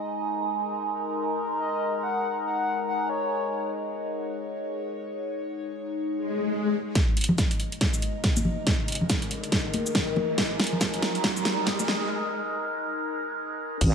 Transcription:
Already playing: G#3 D#4
0.10 A#4
1.60 D#5
2.02 F#5
2.45 F#5
2.88 F#5
3.10 C#5
3.53 C#5
6.10 swell
6.95 G#3 D#4 A#4, kick, snare, closed hi-hat, riser
7.17 closed hi-hat
7.21 closed hi-hat
7.24 closed hi-hat
7.29 low conga
7.38 kick, snare, closed hi-hat, shaker
7.51 closed hi-hat
7.60 closed hi-hat
7.72 closed hi-hat
7.81 kick, snare, closed hi-hat
7.94 shaker
8.02 closed hi-hat
8.24 kick, snare, closed hi-hat
8.36 high conga, shaker
8.45 low conga
8.67 kick, snare, closed hi-hat
8.88 closed hi-hat
8.92 closed hi-hat
8.95 closed hi-hat
9.01 low conga
9.10 kick, snare, closed hi-hat, shaker
9.22 closed hi-hat
9.31 closed hi-hat
9.44 closed hi-hat
9.52 kick, snare, closed hi-hat
9.74 closed hi-hat, high conga
9.86 shaker
9.95 kick, snare, closed hi-hat
10.16 high conga, low conga
10.38 kick, snare, closed hi-hat
10.60 snare, closed hi-hat
10.64 closed hi-hat
10.67 closed hi-hat
10.72 low conga
10.81 kick, snare, closed hi-hat, shaker
10.94 closed hi-hat
11.02 snare, closed hi-hat
11.15 closed hi-hat
11.24 kick, snare, closed hi-hat
11.37 shaker
11.45 snare, closed hi-hat
11.67 kick, snare, closed hi-hat
11.79 high conga, shaker
11.87 snare, low conga
13.81 G#1 G#3 D#4 A#4, kick, closed hi-hat, crash

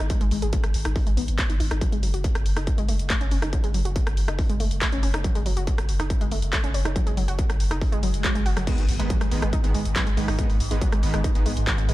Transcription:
0.10 G#3, kick, closed hi-hat
0.21 G#1 G#3, closed hi-hat
0.31 G#1 G#3, open hi-hat
0.42 G#1 G#4, closed hi-hat
0.53 kick, closed hi-hat
0.64 G#1, cross-stick, closed hi-hat
0.74 G#1, open hi-hat
0.85 G#1 D#4, cross-stick, closed hi-hat
0.96 kick, open hi-hat
1.07 G#1 G#3, closed hi-hat
1.17 G#1 B3, open hi-hat
1.28 G#1, closed hi-hat
1.39 B3, kick, clap, closed hi-hat
1.49 G#1 D#4, closed hi-hat
1.60 G#1 D#4, open hi-hat
1.71 G#1 D#4, cross-stick, closed hi-hat
1.81 F#3, kick, closed hi-hat
1.92 F#1 G#3, closed hi-hat
2.03 F#1 F#3, open hi-hat
2.14 F#1 F#4, closed hi-hat
2.24 kick, closed hi-hat
2.35 F#1, cross-stick, closed hi-hat
2.46 F#1, open hi-hat
2.57 F#1 D#4, cross-stick, closed hi-hat
2.67 kick, closed hi-hat
2.78 F#1 G#3, closed hi-hat
2.89 F#1 A3, open hi-hat
2.99 F#1, closed hi-hat
3.10 A3, kick, clap, closed hi-hat
3.21 F#1 C#4, closed hi-hat
3.31 F#1 C#4, open hi-hat
3.42 F#1 D#4, cross-stick, closed hi-hat
3.53 F#3, kick, closed hi-hat
3.64 F#1 G#3, closed hi-hat
3.74 F#1 F#3, open hi-hat
3.85 F#1 F#4, closed hi-hat
3.96 kick, closed hi-hat
4.07 F#1, cross-stick, closed hi-hat
4.17 F#1, open hi-hat
4.28 F#1 D#4, cross-stick, closed hi-hat
4.39 kick, open hi-hat
4.50 F#1 G#3, closed hi-hat
4.60 F#1 A3, open hi-hat
4.71 F#1, closed hi-hat
4.82 A3, kick, clap, closed hi-hat
4.92 F#1 C#4, closed hi-hat
5.03 F#1 C#4, open hi-hat
5.14 F#1 D#4, cross-stick, closed hi-hat
5.24 F#3, kick, closed hi-hat
5.35 F#1 G#3, closed hi-hat
5.46 F#1 F#3, open hi-hat
5.57 F#1 F#4, closed hi-hat
5.67 kick, closed hi-hat
5.78 F#1, cross-stick, closed hi-hat
5.88 F#1, open hi-hat
6.00 F#1 D#4, cross-stick, closed hi-hat
6.10 kick, closed hi-hat
6.21 F#1 G#3, closed hi-hat
6.31 F#1 A3, open hi-hat
6.42 F#1, closed hi-hat
6.53 A3, kick, clap, closed hi-hat
6.64 F#1 C#4, closed hi-hat
6.74 F#1 C#4, open hi-hat
6.85 F#1 D#4, cross-stick, closed hi-hat
6.96 F#3, kick, closed hi-hat
7.07 F#1 G#3, closed hi-hat
7.17 F#1 F#3, open hi-hat
7.28 F#1 F#4, closed hi-hat
7.39 kick, closed hi-hat
7.50 F#1, cross-stick, closed hi-hat
7.60 F#1, open hi-hat
7.71 F#1 D#4, cross-stick, closed hi-hat
7.81 kick, open hi-hat, swell
7.92 F#1 G#3, closed hi-hat
8.03 F#1 F#3, open hi-hat
8.14 F#1, closed hi-hat
8.24 F#3, kick, clap, closed hi-hat
8.35 F#1 G#3, closed hi-hat
8.46 F#1 F#4, open hi-hat
8.57 F#1 F#3, cross-stick, closed hi-hat
8.67 G#2 D#3 G#3 B3, kick, closed hi-hat, crash, impact
8.78 G#1, closed hi-hat
8.89 G#1, open hi-hat
8.99 G#1 D#3 G#3 B3, closed hi-hat
9.10 F#3, kick, closed hi-hat
9.21 G#1 G#3, cross-stick, closed hi-hat
9.31 G#1 D#3 G#3 B3, open hi-hat
9.42 G#1 G#3, cross-stick, closed hi-hat
9.53 D#4, kick, closed hi-hat
9.64 G#1 D#3 G#3 B3, closed hi-hat
9.74 G#1 G#3, open hi-hat
9.85 G#1, closed hi-hat
9.96 D#3 F#3 G#3 B3, kick, clap, closed hi-hat
10.07 G#1 G#3, closed hi-hat
10.17 G#1 D#3 G#3 B3, open hi-hat
10.28 G#1 D#4, cross-stick, open hi-hat
10.39 D#3 G#3 B3, kick, closed hi-hat
10.49 G#1, open hi-hat
10.60 G#1, open hi-hat
10.71 G#1 D#3 G#3 B3, closed hi-hat
10.81 F#3, kick, closed hi-hat
10.92 G#1 G#3, cross-stick, closed hi-hat
11.03 G#1 D#3 G#3 B3, open hi-hat
11.14 G#1 G#3, cross-stick, closed hi-hat
11.24 D#4, kick, closed hi-hat
11.35 G#1 D#3 G#3 B3, closed hi-hat
11.46 G#1 G#3, open hi-hat
11.56 G#1, closed hi-hat
11.67 D#3 F#3 G#3 B3, kick, clap, closed hi-hat
11.78 G#1 G#3, closed hi-hat
11.89 G#1 D#3 G#3 B3, open hi-hat

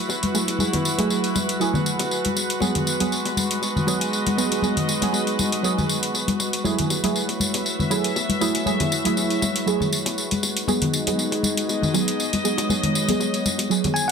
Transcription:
Already playing: A3 E4 F#4 G#4 B4 C#5
0.09 tambourine, high bongo
0.23 closed hi-hat, tambourine, high conga
0.34 F#3 A3 E4 G#4, tambourine
0.48 closed hi-hat, tambourine, high bongo
0.58 F#3 A3 E4 G#4 D#5, tambourine, high conga
0.73 closed hi-hat, tambourine, high bongo, low conga
0.85 tambourine
0.98 F#3 A3 E4 G#4, closed hi-hat, tambourine, high conga
1.09 tambourine, high bongo
1.24 closed hi-hat, tambourine
1.35 tambourine, high bongo, high conga
1.49 closed hi-hat, tambourine
1.59 F#3 A3 E4 G#4, tambourine
1.74 tambourine, high bongo, high conga, low conga
1.86 tambourine
1.99 closed hi-hat, tambourine, high bongo
2.11 tambourine
2.25 closed hi-hat, tambourine, high conga
2.36 G#3 B3 D#4, tambourine, high bongo
2.50 closed hi-hat, tambourine
2.60 F#3 B3 G#4, tambourine, high bongo, high conga
2.75 closed hi-hat, tambourine, low conga
2.87 tambourine
3.00 F#3 B3 G#4, closed hi-hat, tambourine, high bongo, high conga
3.12 tambourine
3.25 closed hi-hat, tambourine, high bongo
3.37 tambourine, high conga
3.51 closed hi-hat, tambourine
3.56 D#5
3.62 tambourine, high bongo
3.76 tambourine, high conga, low conga
3.87 F#3 B3 G#4, tambourine, high bongo
4.01 closed hi-hat, tambourine
4.13 tambourine
4.26 closed hi-hat, tambourine, high bongo, high conga
4.37 F#3 B3 G#4, tambourine
4.52 closed hi-hat, tambourine, high bongo
4.62 F#3 B3 G#4, tambourine, high conga
4.77 closed hi-hat, tambourine, low conga
4.88 tambourine, high bongo
5.01 F#3 B3 G#4, closed hi-hat, tambourine, high conga
5.13 tambourine, high bongo
5.27 closed hi-hat, tambourine
5.39 tambourine, high conga
5.52 closed hi-hat, tambourine, high bongo
5.63 F#3 B3 G#4, tambourine
5.78 tambourine, high bongo, high conga, low conga
5.89 tambourine
6.03 closed hi-hat, tambourine
6.14 tambourine, high bongo
6.28 closed hi-hat, tambourine, high conga
6.40 tambourine, high bongo
6.53 closed hi-hat, tambourine
6.64 F#3 A3 E4 G#4 C#5, tambourine, high bongo, high conga
6.79 closed hi-hat, tambourine, low conga
6.90 tambourine, high bongo
7.03 F#3 A3 E4 G#4, closed hi-hat, tambourine, high conga
7.16 tambourine
7.29 closed hi-hat, tambourine, high bongo
7.40 tambourine, high conga
7.47 E5
7.54 closed hi-hat, tambourine, high bongo
7.66 tambourine
7.79 tambourine, high conga, low conga
7.90 F#3 A3 E4 G#4, tambourine, high bongo
8.04 closed hi-hat, tambourine
8.16 tambourine, high bongo
8.29 closed hi-hat, tambourine, high conga
8.40 F#3 A3 E4 G#4, tambourine
8.55 closed hi-hat, tambourine, high bongo
8.66 F#3 A3 E4 G#4, tambourine, high conga
8.80 closed hi-hat, tambourine, high bongo, low conga
8.92 tambourine
9.04 F#3 A3 E4 G#4, closed hi-hat, tambourine, high conga
9.17 tambourine, high bongo
9.30 closed hi-hat, tambourine
9.42 tambourine, high bongo, high conga
9.56 closed hi-hat, tambourine
9.66 F#3 A3 E4 G#4, tambourine
9.80 tambourine, high bongo, high conga, low conga
9.93 tambourine
10.06 closed hi-hat, tambourine, high bongo
10.18 tambourine
10.31 closed hi-hat, tambourine, high conga
10.42 G#3 B3 D#4 G#4 D#5, tambourine, high bongo
10.57 closed hi-hat, tambourine
10.67 F#3 B3 G#4, tambourine, high bongo, high conga
10.82 closed hi-hat, tambourine, low conga
10.94 tambourine
11.07 F#3 B3 G#4, closed hi-hat, tambourine, high bongo, high conga
11.19 tambourine
11.32 closed hi-hat, tambourine, high bongo
11.43 tambourine, high conga
11.57 closed hi-hat, tambourine
11.69 D#5, tambourine, high bongo
11.82 tambourine, high conga, low conga
11.93 F#3 B3 G#4, tambourine, high bongo
12.08 closed hi-hat, tambourine
12.20 tambourine
12.33 closed hi-hat, tambourine, high bongo, high conga
12.44 F#3 B3 G#4 C#5, tambourine
12.58 closed hi-hat, tambourine, high bongo
12.69 F#3 B3 G#4, tambourine, high conga
12.83 closed hi-hat, tambourine, low conga
12.95 tambourine, high bongo
13.08 F#3 B3 G#4, closed hi-hat, tambourine, high conga
13.20 tambourine, high bongo
13.34 closed hi-hat, tambourine
13.45 tambourine, high conga
13.58 closed hi-hat, tambourine, high bongo
13.69 F#3 B3 G#4, tambourine
13.84 closed hi-hat, tambourine, high bongo, high conga, low conga
13.94 G#5, tambourine
14.08 F#5

